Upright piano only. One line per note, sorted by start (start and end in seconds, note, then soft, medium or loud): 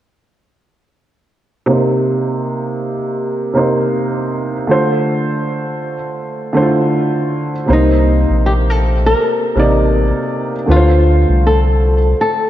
1.66 2.92 C3 medium
1.66 2.93 A#3 medium
1.66 2.94 D#4 medium
1.70 2.94 C5 medium
3.53 4.51 C3 medium
3.53 4.51 A#3 medium
3.53 4.52 D#4 medium
3.53 4.53 C5 medium
4.67 5.93 D3 medium
4.67 5.93 A3 medium
4.67 5.94 F4 medium
4.71 5.95 C5 loud
6.53 7.50 D3 medium
6.53 7.51 A3 medium
6.53 6.64 E4 medium
6.53 7.52 C5 medium
6.62 7.55 F4 medium
7.66 8.92 C3 medium
7.66 8.93 A#3 medium
7.66 8.94 D#4 medium
7.66 8.94 C5 medium
9.55 10.52 C3 medium
9.55 10.53 A#3 medium
9.55 10.53 D#4 medium
9.60 10.54 D5 medium
10.66 11.92 D3 medium
10.66 11.93 A3 medium
10.66 11.94 F4 medium
10.66 10.77 B4 medium
10.76 11.97 C5 medium